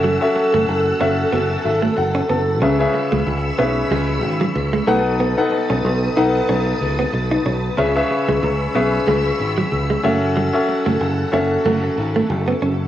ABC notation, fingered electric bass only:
X:1
M:4/4
L:1/16
Q:"Swing 16ths" 1/4=93
K:F#dor
V:1 name="Fingered electric bass" clef=bass
F,,,2 z F,,, F,,,2 F,,,2 F,,,2 G,,,2 F,,,2 F,,,2 | C,,2 z C,, C,,2 B,,,2 C,,2 G,,,2 C,,2 B,,,2- | B,,,2 z B,,, B,,,2 B,,,2 B,,,2 C,,2 B,,,2 B,,,2 | C,,2 z C,, C,,2 B,,,2 C,,2 G,,,2 C,,2 F,,,2- |
F,,,2 z F,,, F,,,2 F,,,2 F,,,2 G,,,2 F,,,2 F,,,2 |]